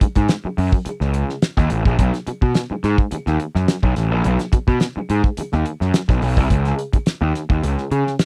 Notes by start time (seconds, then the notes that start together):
0.01 muted picked electric bass stroke, kick, closed hi-hat
0.15 G#2, kick, closed hi-hat
0.28 snare, closed hi-hat
0.45 muted picked electric bass stroke
0.58 F#2, open hi-hat
0.72 kick
0.86 muted picked electric bass stroke, closed hi-hat
1.01 C#2, snare
1.14 closed hi-hat
1.29 snare
1.42 snare, closed hi-hat
1.57 D#2, kick, snare
1.70 A1, closed hi-hat
1.85 A#1, kick
1.99 B1, kick, closed hi-hat
2.14 snare, closed hi-hat
2.27 muted picked electric bass stroke, closed hi-hat
2.42 B2, kick
2.55 snare, closed hi-hat
2.71 muted picked electric bass stroke
2.83 G#2, snare, closed hi-hat
2.98 kick
3.11 muted picked electric bass stroke, closed hi-hat
3.26 D#2, snare
3.40 closed hi-hat
3.55 F#2, snare
3.68 snare, closed hi-hat
3.83 B1, kick
3.96 A1, snare, closed hi-hat
4.11 A#1
4.24 B1, closed hi-hat
4.39 snare, closed hi-hat
4.53 muted picked electric bass stroke, kick, closed hi-hat
4.68 B2, kick
4.80 snare, closed hi-hat
4.97 muted picked electric bass stroke
5.10 G#2, closed hi-hat
5.24 kick
5.37 muted picked electric bass stroke, closed hi-hat
5.52 D#2, snare
5.65 closed hi-hat
5.81 F#2, snare
5.94 snare, closed hi-hat
6.09 B1, kick, snare
6.22 B1, open hi-hat
6.37 C2, kick
6.50 C#2, kick, closed hi-hat
6.65 snare, closed hi-hat
6.79 closed hi-hat
6.93 muted picked electric bass stroke, kick, closed hi-hat
7.06 snare, closed hi-hat
7.21 D#2
7.35 snare, closed hi-hat
7.50 D#2, kick
7.63 C#2, closed hi-hat
7.78 snare
7.91 C#3, closed hi-hat
8.07 snare
8.19 snare, closed hi-hat